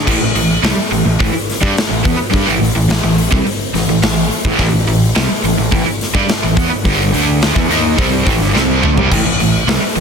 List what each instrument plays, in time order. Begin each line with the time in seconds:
0.07 fingered electric bass A1, overdriven electric guitar A2 E3, kick, crash
0.21 fingered electric bass A1, overdriven electric guitar A2 E3
0.35 fingered electric bass A1, overdriven electric guitar A2 E3, open hi-hat
0.63 fingered electric bass C2, overdriven electric guitar C3 G3, snare, open hi-hat
0.77 muted fingered electric bass stroke, muted overdriven electric guitar stroke
0.92 fingered electric bass A1, overdriven electric guitar A2 E3, open hi-hat
1.05 fingered electric bass A1, overdriven electric guitar A2 E3
1.19 overdriven electric guitar A2 E3, kick, open hi-hat
1.33 muted overdriven electric guitar stroke
1.50 snare, open hi-hat
1.61 fingered electric bass G2, overdriven electric guitar G3 D4, kick
1.76 muted overdriven electric guitar stroke, muted fingered electric bass stroke, snare, open hi-hat
1.89 fingered electric bass A1, overdriven electric guitar A2 E3
2.03 fingered electric bass E2, overdriven electric guitar E3 B3, kick, open hi-hat
2.18 muted overdriven electric guitar stroke, muted fingered electric bass stroke
2.31 fingered electric bass G2, overdriven electric guitar G3 D4, kick, open hi-hat
2.46 fingered electric bass A1, overdriven electric guitar A2 E3
2.61 fingered electric bass A1, overdriven electric guitar A2 E3, open hi-hat
2.75 fingered electric bass A1, overdriven electric guitar A2 E3
2.89 overdriven electric guitar A2 E3, snare, open hi-hat
3.03 fingered electric bass A1, overdriven electric guitar A2 E3
3.18 open hi-hat
3.31 fingered electric bass C2, overdriven electric guitar C3 G3, kick
3.46 muted overdriven electric guitar stroke, open hi-hat
3.74 fingered electric bass A1, overdriven electric guitar A2 E3, snare, open hi-hat
3.88 fingered electric bass A1, overdriven electric guitar A2 E3
4.02 fingered electric bass A1, overdriven electric guitar A2 E3, snare, open hi-hat
4.31 open hi-hat
4.45 fingered electric bass A1, overdriven electric guitar A2 E3, kick
4.59 fingered electric bass A1, overdriven electric guitar A2 E3, kick, open hi-hat
4.72 fingered electric bass A1, overdriven electric guitar A2 E3
4.87 fingered electric bass A1, overdriven electric guitar A2 E3, open hi-hat
5.15 fingered electric bass C2, overdriven electric guitar C3 G3, snare, open hi-hat
5.30 muted overdriven electric guitar stroke
5.43 fingered electric bass A1, overdriven electric guitar A2 E3, open hi-hat
5.57 fingered electric bass A1, overdriven electric guitar A2 E3
5.71 fingered electric bass A1, overdriven electric guitar A2 E3, kick, open hi-hat
5.86 muted overdriven electric guitar stroke
6.01 snare, open hi-hat
6.14 fingered electric bass G2, overdriven electric guitar G3 D4, kick, snare
6.29 muted overdriven electric guitar stroke, muted fingered electric bass stroke, snare, open hi-hat
6.43 fingered electric bass A1, overdriven electric guitar A2 E3
6.57 fingered electric bass E2, overdriven electric guitar E3 B3, kick, open hi-hat
6.71 muted overdriven electric guitar stroke, muted fingered electric bass stroke
6.84 fingered electric bass G1, overdriven electric guitar G2 D3 G3, kick, open hi-hat
7.12 fingered electric bass D2, overdriven electric guitar D3 A3 D4, open hi-hat
7.42 snare, open hi-hat
7.55 fingered electric bass E2, overdriven electric guitar E3 B3, kick
7.69 fingered electric bass D#2, overdriven electric guitar D#3 A#3 D#4, open hi-hat
7.97 fingered electric bass C2, overdriven electric guitar C3 G3 C4, kick, open hi-hat
8.25 fingered electric bass A1, overdriven electric guitar A2 E3, kick, snare, open hi-hat
8.39 fingered electric bass G1, overdriven electric guitar G2 D3, snare
8.53 fingered electric bass C2, overdriven electric guitar C3 G3 C4, snare
8.82 fingered electric bass D2, overdriven electric guitar D3 A3, mid tom
8.97 fingered electric bass C2, overdriven electric guitar C3 G3, floor tom
9.11 fingered electric bass A1, overdriven electric guitar A2 E3, kick, crash
9.25 fingered electric bass A1, overdriven electric guitar A2 E3
9.40 fingered electric bass A1, overdriven electric guitar A2 E3, open hi-hat
9.67 fingered electric bass C2, overdriven electric guitar C3 G3, snare, open hi-hat
9.82 muted overdriven electric guitar stroke
9.96 fingered electric bass A1, overdriven electric guitar A2 E3, open hi-hat